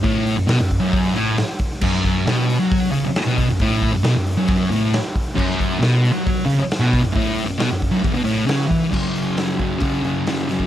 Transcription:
0.03 distorted electric guitar A2, kick, open hi-hat
0.27 open hi-hat
0.37 distorted electric guitar F#2
0.47 distorted electric guitar B2, snare, open hi-hat
0.58 distorted electric guitar F#2
0.71 kick, open hi-hat
0.80 distorted electric guitar F#2
0.93 kick, open hi-hat
1.14 distorted electric guitar A2, open hi-hat
1.38 snare, open hi-hat
1.59 kick, open hi-hat
1.81 distorted electric guitar F#2, kick, crash
1.94 snare
2.05 kick, open hi-hat
2.26 distorted electric guitar B2, snare, open hi-hat
2.50 open hi-hat
2.60 distorted electric guitar F#3
2.72 kick, open hi-hat
2.91 distorted electric guitar C#3, open hi-hat
3.05 muted distorted electric guitar stroke
3.16 snare, open hi-hat
3.26 distorted electric guitar B2
3.38 kick, open hi-hat
3.49 distorted electric guitar F#2
3.59 distorted electric guitar A2, kick, open hi-hat
3.82 kick, open hi-hat
3.92 distorted electric guitar F#2
4.03 distorted electric guitar B2, snare, open hi-hat
4.15 distorted electric guitar F#2
4.26 open hi-hat
4.38 distorted electric guitar F#2
4.48 kick, open hi-hat
4.70 distorted electric guitar A2, open hi-hat
4.93 snare, open hi-hat
5.16 kick, open hi-hat
5.35 distorted electric guitar F#2, kick, crash
5.51 snare
5.60 kick, open hi-hat
5.79 distorted electric guitar B2, snare, open hi-hat
6.05 open hi-hat
6.12 distorted electric guitar F#3
6.27 kick, open hi-hat
6.46 distorted electric guitar C#3
6.50 open hi-hat
6.59 muted distorted electric guitar stroke
6.71 snare, open hi-hat
6.80 distorted electric guitar B2, snare
6.93 kick, open hi-hat
7.02 distorted electric guitar F#2
7.12 distorted electric guitar A2, kick
7.16 open hi-hat
7.38 open hi-hat
7.45 distorted electric guitar F#2
7.58 distorted electric guitar B2, snare, open hi-hat
7.70 distorted electric guitar F#2
7.82 kick, open hi-hat
7.92 distorted electric guitar F#2
8.03 distorted electric guitar E2, kick, open hi-hat
8.13 distorted electric guitar B2
8.24 distorted electric guitar A2, open hi-hat
8.46 distorted electric guitar C#3, snare, open hi-hat
8.61 snare
8.68 distorted electric guitar E3, kick, open hi-hat
8.90 distorted electric guitar F#2 C#3 F#3, kick, crash
9.15 open hi-hat
9.37 snare, open hi-hat
9.59 distorted electric guitar C#3 F#3, kick, open hi-hat
9.79 distorted electric guitar F#2 C#3 F#3, kick, open hi-hat
10.02 distorted electric guitar C#3 F#3, open hi-hat
10.27 distorted electric guitar F#2 C#3 F#3, snare, open hi-hat
10.49 distorted electric guitar C#3 F#3, snare, open hi-hat
10.60 kick

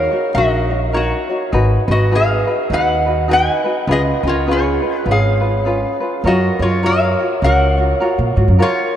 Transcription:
Already playing: ukulele D#4 F#4 A#4 C#5, resonator guitar played with a steel bar A#4 F5, vibraphone C#5
0.11 ukulele D#4 F#4 C#5
0.33 upright bass A#1, ukulele D#4 F#4 A#4 C#5, vibraphone A#4, resonator guitar played with a steel bar D#5
0.38 resonator guitar played with a steel bar F#4
0.70 ukulele D#4 F#4 C#5
0.92 ukulele D#4 F#4 A#4 C#5, vibraphone A#4, resonator guitar played with a steel bar C#5
0.97 resonator guitar played with a steel bar F#4
1.29 ukulele D#4 F#4 C#5
1.52 upright bass G#1, ukulele D#4 F#4 G#4 B4
1.87 upright bass G#1, ukulele D#4 F#4 B4, resonator guitar played with a steel bar F#4, vibraphone B4
1.92 resonator guitar played with a steel bar D#5
2.11 ukulele D#4 F#4 G#4 B4, vibraphone B4
2.15 resonator guitar played with a steel bar G#4 F5
2.47 ukulele D#4 F#4 B4
2.70 upright bass D#2, ukulele D#4 F#4 G#4 B4, resonator guitar played with a steel bar B4, vibraphone D#5
2.74 resonator guitar played with a steel bar F#5
3.06 ukulele D#4 F#4 B4
3.28 ukulele D#4 F#4 G#4 B4, resonator guitar played with a steel bar B4, vibraphone D#5
3.33 resonator guitar played with a steel bar G#5
3.64 ukulele D#4 F#4 B4
3.87 upright bass C#2, ukulele C#4 F4 G#4 B4, resonator guitar played with a steel bar G#4, vibraphone B4
3.92 resonator guitar played with a steel bar D#5
4.23 upright bass C#2, ukulele C#4 F4 B4, vibraphone A#4
4.27 resonator guitar played with a steel bar F4 C#5
4.47 ukulele C#4 F4 G#4 B4, vibraphone G#4
4.51 resonator guitar played with a steel bar F4 C#5
4.82 ukulele C#4 F4 B4
4.98 resonator guitar played with a steel bar B4
5.04 upright bass G#1, ukulele C#4 F4 G#4 B4
5.09 resonator guitar played with a steel bar G#4 F5, vibraphone C#5
5.41 ukulele C#4 F4 B4
5.65 ukulele C#4 F4 G#4 B4
6.00 ukulele C#4 F4 B4
6.24 upright bass F#2, ukulele F4 F#4 A#4 C#5, resonator guitar played with a steel bar F#4 D#5, vibraphone A#4
6.59 upright bass F#2, ukulele F4 F#4 C#5, resonator guitar played with a steel bar F4 C#5, vibraphone A#4
6.83 ukulele F4 F#4 A#4 C#5, resonator guitar played with a steel bar A#4 F5, vibraphone C#5
7.19 ukulele F4 F#4 C#5
7.42 upright bass C#2, ukulele F4 F#4 A#4 C#5, resonator guitar played with a steel bar A#4 F#5, vibraphone C#5
7.77 ukulele F4 F#4 C#5
8.00 ukulele F4 F#4 A#4 C#5
8.18 upright bass A#2
8.36 upright bass G#2, ukulele F4 F#4 C#5
8.48 upright bass F#2
8.58 ukulele F4 F#4 A#4 C#5, vibraphone A#4, resonator guitar played with a steel bar C#5
8.63 resonator guitar played with a steel bar F4

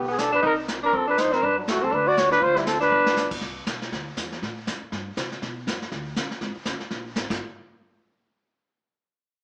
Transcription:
Already playing: upright bass B1
0.08 tenor saxophone B3, trumpet G#4
0.18 tenor saxophone D4, trumpet A4, snare, hi-hat pedal
0.32 tenor saxophone D4, trumpet B4
0.43 upright bass C2, tenor saxophone D#4, trumpet A#4, brush sweep, kick
0.68 snare, hi-hat pedal
0.83 tenor saxophone D4, trumpet A#4
0.93 upright bass F2, tenor saxophone C4, trumpet A4, brush sweep, kick
1.08 tenor saxophone D4, trumpet B4
1.18 tenor saxophone D#4, trumpet C5, snare, hi-hat pedal
1.33 tenor saxophone C4, trumpet A#4, snare
1.43 upright bass G2, tenor saxophone D4, trumpet B4, brush sweep, kick
1.57 tenor saxophone F#3, trumpet D4
1.68 tenor saxophone A3, trumpet F#4, snare, hi-hat pedal
1.75 upright bass F#2
1.82 upright bass D2, tenor saxophone C4, trumpet A4
1.92 upright bass D2, tenor saxophone D4, trumpet B4, brush sweep, kick
2.07 tenor saxophone F#4, trumpet D5
2.17 tenor saxophone F#4, trumpet C#5, snare, hi-hat pedal
2.31 tenor saxophone D4, trumpet B4, snare
2.41 upright bass D2, tenor saxophone F4, trumpet C5, brush sweep, kick
2.56 tenor saxophone G3, trumpet E4, snare
2.66 tenor saxophone C4, trumpet A4, snare, hi-hat pedal
2.80 tenor saxophone D4, trumpet B4, snare
2.92 upright bass G1
3.06 snare
3.17 snare, hi-hat pedal
3.31 kick, crash
3.41 upright bass C2, brush sweep, kick, snare
3.66 upright bass B1, kick, snare, hi-hat pedal
3.82 snare
3.92 upright bass D2, brush sweep, kick, snare
4.17 upright bass E2, kick, snare, hi-hat pedal
4.32 snare
4.42 upright bass A2, brush sweep, kick, snare
4.67 upright bass F#2, kick, snare, hi-hat pedal
4.82 muted upright bass stroke
4.92 upright bass G2, brush sweep, kick, snare
5.17 upright bass C3, kick, snare, hi-hat pedal
5.32 snare
5.42 upright bass B2, brush sweep, kick, snare
5.67 upright bass F#2, kick, snare, hi-hat pedal
5.82 snare
5.92 upright bass D2, brush sweep, kick, snare
6.16 upright bass A1, kick, snare, hi-hat pedal
6.31 muted upright bass stroke, snare
6.41 upright bass G#1, brush sweep, kick, snare
6.56 muted upright bass stroke
6.65 upright bass F#1, kick, snare, hi-hat pedal
6.80 muted upright bass stroke, snare
6.90 upright bass A#1, brush sweep, kick, snare
7.16 upright bass G#1, kick, snare, hi-hat pedal
7.30 upright bass G1, kick, snare, crash

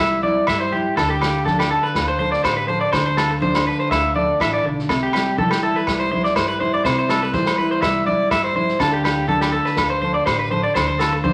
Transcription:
Already playing: clean electric guitar E3 E4 E5
0.00 upright bass C2, clean electric guitar G3
0.23 clean electric guitar E4 D5, muted conga, high conga
0.47 upright bass G2, clean electric guitar G4 E5, kick, snare, low agogo
0.60 clean electric guitar C5
0.72 clean electric guitar E4 G4, high conga
0.97 upright bass D2, clean electric guitar D3 A4, kick, snare, low agogo
1.10 clean electric guitar G4
1.21 clean electric guitar F4 G4, snare, low agogo
1.45 clean electric guitar D4 A4, kick, snare, high conga
1.59 clean electric guitar G4, snare, low agogo
1.71 clean electric guitar A4
1.83 clean electric guitar B4
1.95 upright bass D2, clean electric guitar F4, kick, snare, muted conga, low agogo
2.08 clean electric guitar C5
2.19 clean electric guitar A4 C5, muted conga, high conga
2.32 clean electric guitar D5, snare
2.44 upright bass A1, clean electric guitar G4 C5, kick, snare, low agogo
2.57 clean electric guitar B4
2.68 clean electric guitar A4 C5, high conga
2.81 clean electric guitar D5
2.92 upright bass D2, clean electric guitar D3 C5, kick, snare, low agogo
3.06 clean electric guitar C5
3.17 clean electric guitar F4 A4, snare, low agogo
3.31 muted clean electric guitar stroke
3.42 clean electric guitar D4 C5, kick, high conga
3.54 snare, low agogo
3.66 clean electric guitar A4 B4, muted conga
3.80 clean electric guitar C5
3.91 upright bass D2, clean electric guitar F4 E5, kick, snare, muted conga, low agogo
4.16 clean electric guitar A4 D5, muted conga, high conga
4.40 upright bass A1, clean electric guitar E3 E5, kick, snare, low agogo
4.53 clean electric guitar D5
4.63 upright bass B1, clean electric guitar D3, muted clean electric guitar stroke
4.79 snare
4.89 upright bass C2, clean electric guitar C3, muted clean electric guitar stroke, kick, snare, muted conga, low agogo
5.03 clean electric guitar G4
5.13 clean electric guitar G3 G4, snare, low agogo
5.38 clean electric guitar E3 A4, kick, high conga
5.51 clean electric guitar G4, snare, low agogo
5.63 clean electric guitar E4 A4, muted conga
5.76 clean electric guitar B4
5.87 upright bass C2, clean electric guitar G3, kick, snare, low agogo
6.00 clean electric guitar C5
6.12 clean electric guitar E4 C5, muted conga, high conga
6.24 clean electric guitar D5, snare
6.36 upright bass G2, clean electric guitar G4 C5, kick, snare, low agogo
6.48 clean electric guitar B4
6.60 clean electric guitar E4 C5, high conga
6.74 clean electric guitar D5
6.84 upright bass C2, clean electric guitar C3 C5, kick, snare, muted conga, low agogo
6.99 clean electric guitar C5
7.09 clean electric guitar G3 A4, snare, low agogo
7.22 clean electric guitar B4
7.33 clean electric guitar E3 C5, kick, snare, high conga
7.46 snare, low agogo
7.58 clean electric guitar E4 B4, muted conga
7.71 clean electric guitar C5
7.82 upright bass C2, clean electric guitar G3 E5, kick, snare, low agogo
8.06 clean electric guitar E4 D5, muted conga, high conga
8.31 upright bass G2, clean electric guitar G4 E5, kick, snare, low agogo
8.44 clean electric guitar C5
8.56 clean electric guitar E4 C5, high conga
8.69 snare
8.80 upright bass D2, clean electric guitar D3 D4 F4 A4, kick, snare, low agogo
8.93 clean electric guitar G4
9.04 clean electric guitar F4 G4, snare, low agogo
9.28 clean electric guitar D4 A4, kick, high conga
9.41 clean electric guitar G4, snare, low agogo
9.52 clean electric guitar A4, muted conga
9.65 clean electric guitar B4, snare
9.76 upright bass D2, clean electric guitar F4, kick, snare, muted conga, low agogo
9.90 clean electric guitar C5
10.02 clean electric guitar A4 C5, muted conga, high conga
10.14 clean electric guitar D5
10.26 upright bass A1, clean electric guitar G4 C5, kick, snare, low agogo
10.39 clean electric guitar B4
10.51 clean electric guitar A4 C5, high conga
10.63 clean electric guitar D5
10.75 upright bass D2, clean electric guitar D3 C5, kick, snare, muted conga, low agogo
10.88 clean electric guitar C5
10.99 clean electric guitar F4 A4, snare, low agogo
11.13 muted clean electric guitar stroke
11.24 clean electric guitar D4 C5, kick, high conga

